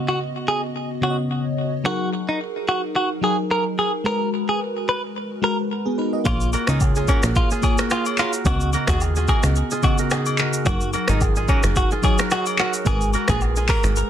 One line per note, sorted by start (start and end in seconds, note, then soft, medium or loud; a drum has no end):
0.00 0.58 C#3 medium
0.00 0.59 B3 medium
0.00 0.59 F#4 medium
0.00 0.60 D#5 medium
0.08 0.19 F#4 medium
0.48 0.61 G#4 medium
1.01 1.73 C#3 medium
1.01 1.73 B3 medium
1.01 1.74 F#4 medium
1.01 1.16 F#4 medium
1.01 1.10 C#5 medium
1.10 1.77 D#5 medium
1.84 2.79 F#3 medium
1.84 2.79 D#4 medium
1.84 2.09 F#4 loud
1.84 2.79 G#4 medium
1.84 2.80 A#4 medium
2.29 2.39 D#4 medium
2.69 2.81 F#4 medium
2.96 3.09 F#4 medium
3.21 3.93 F#3 medium
3.21 3.94 D#4 medium
3.21 3.94 G#4 medium
3.21 3.36 G#4 medium
3.21 3.94 A#4 medium
3.51 3.64 A#4 medium
3.79 3.91 G#4 medium
4.04 4.99 G#3 medium
4.04 4.99 F#4 medium
4.04 5.00 A#4 medium
4.04 4.29 A#4 loud
4.04 5.00 B4 medium
4.49 4.59 G#4 medium
4.89 5.01 B4 medium
5.42 6.13 G#3 medium
5.42 5.70 F#4 medium
5.42 5.71 A#4 medium
5.42 5.56 A#4 medium
5.42 5.71 B4 medium
5.85 5.98 B3 medium
5.85 5.97 G#4 medium
5.98 6.13 D#4 medium
5.98 6.12 B4 medium
6.13 6.39 F#4 medium
6.13 6.39 D#5 medium
6.24 6.56 A#1 loud
6.24 7.19 A#3 medium
6.24 7.19 F4 medium
6.24 6.49 F4 loud
6.24 7.20 G#4 medium
6.24 7.20 C#5 medium
6.24 kick loud
6.24 high agogo medium
6.24 shaker medium
6.41 shaker medium
6.53 6.76 F#4 medium
6.53 7.08 A#4 medium
6.53 high agogo medium
6.53 shaker medium
6.67 7.07 C#2 loud
6.67 6.79 D#4 medium
6.67 6.97 F4 medium
6.67 6.96 G#4 medium
6.67 finger snap loud
6.67 cross-stick loud
6.67 shaker loud
6.80 kick loud
6.80 low woodblock medium
6.80 shaker medium
6.96 7.16 F4 medium
6.96 7.51 G#4 medium
6.96 shaker medium
7.08 7.21 C#4 medium
7.08 7.58 F#4 medium
7.08 7.79 A#4 medium
7.08 kick medium
7.08 high agogo medium
7.08 shaker medium
7.23 7.43 A#1 medium
7.23 finger snap medium
7.23 cross-stick medium
7.23 shaker medium
7.35 7.49 F4 loud
7.35 kick loud
7.35 shaker medium
7.51 7.86 F4 medium
7.51 7.91 G#4 medium
7.51 shaker medium
7.62 8.33 A#3 medium
7.62 8.34 F4 medium
7.62 8.34 G#4 medium
7.62 7.76 G#4 medium
7.62 8.35 C#5 medium
7.62 kick medium
7.62 high agogo medium
7.62 shaker soft
7.78 7.98 F#4 medium
7.78 8.18 A#4 medium
7.78 finger snap medium
7.78 cross-stick loud
7.78 shaker medium
7.90 8.04 F4 medium
7.90 8.26 F4 medium
7.90 8.89 G#4 medium
7.90 finger snap medium
7.90 cross-stick medium
7.90 low woodblock medium
7.90 shaker medium
8.06 high agogo medium
8.06 shaker medium
8.18 8.32 F4 medium
8.18 8.74 F#4 medium
8.18 8.74 A#4 medium
8.18 clap medium
8.18 shaker medium
8.33 shaker loud
8.44 8.76 C#2 loud
8.44 9.39 C#3 medium
8.44 9.40 B3 medium
8.44 9.40 F#4 medium
8.44 8.70 F#4 loud
8.44 9.40 D#5 medium
8.44 kick loud
8.44 high agogo medium
8.44 shaker medium
8.61 shaker medium
8.73 8.96 F#4 medium
8.73 9.29 A#4 medium
8.73 high agogo medium
8.73 shaker medium
8.87 9.27 D#2 medium
8.87 9.17 F4 medium
8.87 8.99 F#4 medium
8.87 9.16 G#4 medium
8.87 finger snap loud
8.87 kick loud
8.87 cross-stick loud
8.87 shaker loud
9.01 low woodblock medium
9.01 shaker medium
9.16 9.36 F4 medium
9.16 9.71 G#4 medium
9.16 shaker medium
9.28 9.78 F#4 medium
9.28 9.42 G#4 medium
9.28 9.99 A#4 medium
9.28 kick medium
9.28 high agogo medium
9.28 shaker soft
9.43 9.63 C#2 medium
9.43 finger snap medium
9.43 cross-stick medium
9.43 shaker medium
9.56 shaker medium
9.71 10.06 F4 medium
9.71 10.11 G#4 medium
9.71 shaker medium
9.82 10.54 C#3 medium
9.82 10.54 B3 medium
9.82 10.55 F#4 medium
9.82 9.97 F#4 medium
9.82 10.55 D#5 medium
9.82 kick medium
9.82 high agogo medium
9.82 shaker soft
9.98 10.39 F#4 medium
9.98 10.39 A#4 medium
9.98 shaker medium
10.11 11.75 D#4 medium
10.11 11.09 G#4 medium
10.11 finger snap medium
10.11 cross-stick medium
10.11 low woodblock medium
10.11 shaker medium
10.26 high agogo medium
10.26 shaker medium
10.38 10.95 F#4 medium
10.38 10.94 A#4 medium
10.38 clap medium
10.38 shaker medium
10.53 shaker loud
10.65 10.96 F#1 loud
10.65 11.59 F#3 medium
10.65 11.60 D#4 medium
10.65 10.90 F#4 loud
10.65 11.60 G#4 medium
10.65 11.61 A#4 medium
10.65 kick loud
10.65 high agogo medium
10.65 shaker medium
10.81 shaker medium
10.93 11.16 F#4 medium
10.93 11.49 A#4 medium
10.93 high agogo medium
10.93 shaker medium
11.08 11.47 G#1 medium
11.08 11.20 D#4 medium
11.08 11.37 F4 medium
11.08 11.36 G#4 medium
11.08 finger snap loud
11.08 cross-stick loud
11.08 shaker loud
11.21 kick loud
11.21 low woodblock medium
11.21 shaker medium
11.36 11.56 F4 medium
11.36 11.91 G#4 medium
11.36 shaker medium
11.48 11.62 C#4 medium
11.48 11.99 F#4 medium
11.48 12.19 A#4 medium
11.48 kick medium
11.48 high agogo medium
11.48 shaker medium
11.63 11.83 F#1 medium
11.63 finger snap medium
11.63 cross-stick medium
11.63 shaker medium
11.76 11.89 F#4 loud
11.76 kick loud
11.76 shaker medium
11.91 12.26 F4 medium
11.91 12.31 G#4 medium
11.91 shaker medium
12.02 12.74 F#3 medium
12.02 12.74 D#4 medium
12.02 12.75 G#4 medium
12.02 12.17 G#4 medium
12.02 12.75 C#5 medium
12.02 kick medium
12.02 high agogo medium
12.02 shaker soft
12.18 12.60 F#4 medium
12.18 12.59 A#4 medium
12.18 finger snap medium
12.18 cross-stick loud
12.18 shaker medium
12.31 13.95 D#4 medium
12.31 12.44 F#4 medium
12.31 13.29 G#4 medium
12.31 finger snap medium
12.31 cross-stick medium
12.31 low woodblock medium
12.31 shaker medium
12.46 high agogo medium
12.46 shaker medium
12.58 12.72 F#4 medium
12.58 13.15 F#4 medium
12.58 13.14 A#4 medium
12.58 clap medium
12.58 shaker soft
12.74 shaker loud
12.85 13.16 G#1 loud
12.85 13.79 G#3 medium
12.85 13.80 F#4 medium
12.85 13.10 G#4 loud
12.85 13.80 A#4 medium
12.85 13.81 B4 medium
12.85 kick loud
12.85 high agogo medium
12.85 shaker medium
13.01 shaker medium
13.13 13.36 F#4 medium
13.13 13.69 A#4 medium
13.13 high agogo medium
13.13 shaker medium
13.28 13.67 A#1 medium
13.28 13.57 F4 medium
13.28 13.57 G#4 medium
13.28 13.40 G#4 medium
13.28 finger snap loud
13.28 kick loud
13.28 cross-stick loud
13.28 shaker loud
13.41 low woodblock medium
13.41 shaker medium
13.56 13.76 F4 medium
13.56 14.10 G#4 medium
13.56 shaker medium
13.68 14.10 F#4 medium
13.68 14.10 A#4 medium
13.68 13.82 A#4 medium
13.68 kick loud
13.68 clap medium
13.68 open hi-hat medium
13.68 high agogo medium
13.68 shaker medium
13.84 14.03 G#1 medium
13.84 finger snap medium
13.84 cross-stick medium
13.84 shaker medium
13.96 shaker medium